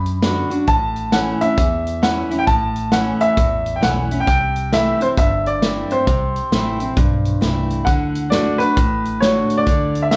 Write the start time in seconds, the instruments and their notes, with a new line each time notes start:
Already playing: fingered electric bass F#2, steel-string acoustic guitar F#2, upright piano B5
0.06 closed hi-hat
0.22 steel-string acoustic guitar D3 B3 D4 F#4, snare, closed hi-hat
0.50 steel-string acoustic guitar D4 F#4, closed hi-hat
0.67 fingered electric bass A1, steel-string acoustic guitar A2, upright piano A5, kick, closed hi-hat
0.96 closed hi-hat
1.12 steel-string acoustic guitar E3 A3 C#4 E4, upright piano F#5, snare, closed hi-hat
1.41 steel-string acoustic guitar C#4 E4, upright piano E5, closed hi-hat
1.58 fingered electric bass E2, steel-string acoustic guitar E2, kick, closed hi-hat
1.87 closed hi-hat
2.02 steel-string acoustic guitar E3 A3 C#4 E4, upright piano F#5, snare, closed hi-hat
2.31 steel-string acoustic guitar C#4 E4, closed hi-hat
2.39 upright piano G5
2.47 fingered electric bass A1, steel-string acoustic guitar A2, upright piano A5, kick, closed hi-hat
2.76 closed hi-hat
2.92 steel-string acoustic guitar E3 A3 C#4 E4, upright piano F#5, snare, closed hi-hat
3.20 upright piano E5, closed hi-hat
3.37 fingered electric bass A1, steel-string acoustic guitar E2, kick, closed hi-hat
3.66 closed hi-hat
3.76 upright piano G5
3.81 fingered electric bass B1, steel-string acoustic guitar E3 A3 C#4 E4, upright piano F#5, snare, closed hi-hat
4.11 steel-string acoustic guitar C#4 E4, closed hi-hat
4.20 upright piano G5
4.27 fingered electric bass C2, steel-string acoustic guitar C3, upright piano G5, kick, closed hi-hat
4.56 closed hi-hat
4.72 steel-string acoustic guitar E3 A3 C4 E4, upright piano E5, snare, closed hi-hat
5.00 steel-string acoustic guitar C4 E4, upright piano C5, closed hi-hat
5.17 fingered electric bass G1, steel-string acoustic guitar G2, upright piano E5, kick, closed hi-hat
5.46 upright piano D5, closed hi-hat
5.62 steel-string acoustic guitar E3 A3 C4 E4, snare, closed hi-hat
5.90 steel-string acoustic guitar C4 E4, upright piano C5, closed hi-hat
6.07 fingered electric bass C2, steel-string acoustic guitar C3, kick, closed hi-hat
6.36 closed hi-hat
6.52 fingered electric bass A1, steel-string acoustic guitar E3 A3 C4 E4, snare, closed hi-hat
6.80 steel-string acoustic guitar C4 E4, closed hi-hat
6.97 fingered electric bass B1, steel-string acoustic guitar G2, kick, closed hi-hat
7.25 closed hi-hat
7.41 fingered electric bass C2, steel-string acoustic guitar E3 A3 C4 E4, snare, closed hi-hat
7.70 closed hi-hat
7.85 fingered electric bass D2, steel-string acoustic guitar D3, upright piano F#5, kick, closed hi-hat
8.15 closed hi-hat
8.30 steel-string acoustic guitar D3 A3 D4 F#4, upright piano D5, snare, closed hi-hat
8.58 steel-string acoustic guitar D4 F#4, upright piano B4, closed hi-hat
8.77 fingered electric bass A1, steel-string acoustic guitar A2, kick, closed hi-hat
9.05 closed hi-hat
9.20 steel-string acoustic guitar D3 A3 D4 F#4, upright piano C#5, snare, closed hi-hat
9.50 closed hi-hat
9.58 upright piano D5
9.66 fingered electric bass D2, steel-string acoustic guitar D3, kick, closed hi-hat
9.95 closed hi-hat
10.03 upright piano E5
10.11 steel-string acoustic guitar D3 A3 D4 F#4, upright piano E5, snare, closed hi-hat